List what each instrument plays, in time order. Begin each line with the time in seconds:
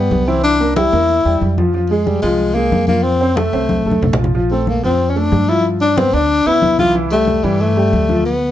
Already playing: grand piano G3 G4, tenor saxophone B3
0.11 upright bass C2, high conga
0.27 grand piano E3 E4, tenor saxophone C4
0.44 tenor saxophone D4, high conga
0.60 grand piano A#3 A#4, high conga
0.76 grand piano G3 G4, tenor saxophone E4, high conga
0.93 upright bass E2, grand piano A#3 A#4, high conga
1.09 high conga
1.25 upright bass E2, grand piano G3 G4, high conga
1.41 upright bass F2, high conga
1.58 grand piano F3 F4, high conga
1.74 grand piano F3 F4, high conga
1.90 tenor saxophone G#3, grand piano G#3 G#4, high conga
2.06 tenor saxophone G3, high conga
2.22 upright bass C2, grand piano F3 F4, tenor saxophone G#3, high conga
2.40 high conga
2.55 grand piano G#3 G#4, tenor saxophone A#3, high conga
2.72 upright bass F2, high conga
2.87 grand piano F3 F4, tenor saxophone A#3, high conga
3.03 tenor saxophone C4, high conga
3.21 grand piano C4 C5, high conga
3.36 tenor saxophone A3, grand piano A3 A4, high conga
3.53 upright bass C2, grand piano C4 C5, high conga
3.69 high conga
3.86 upright bass B1, grand piano A3 A4
3.91 high conga
4.02 upright bass A#1, low conga
4.13 low conga
4.19 grand piano F3 F4
4.24 low conga
4.35 grand piano F3 F4, high conga
4.51 grand piano A3 A4, tenor saxophone C4, high conga
4.67 tenor saxophone A#3, high conga
4.83 upright bass F2, grand piano F3 F4, tenor saxophone C4, high conga
5.00 high conga
5.10 tenor saxophone C#4
5.16 grand piano A3 A4, tenor saxophone D4, high conga
5.32 upright bass G2, high conga
5.49 grand piano F3 F4, tenor saxophone E4
5.65 high conga
5.81 grand piano D4 D5, tenor saxophone D4, high conga
5.98 grand piano B3 B4, tenor saxophone C4, high conga
6.13 upright bass D2, grand piano D4 D5, tenor saxophone D4, high conga
6.30 high conga
6.46 upright bass D2, grand piano B3 B4, tenor saxophone E4, high conga
6.62 upright bass C2, high conga
6.79 grand piano E3 E4, tenor saxophone F4, high conga
6.95 grand piano E3 E4, high conga
7.11 grand piano G3 G4, tenor saxophone A3, high conga
7.28 high conga
7.44 upright bass G2, grand piano E3 E4, tenor saxophone G3, high conga
7.60 tenor saxophone A3, high conga
7.76 grand piano G3 G4, high conga
7.93 upright bass D2, high conga
8.09 grand piano F3 F4, high conga
8.26 tenor saxophone B3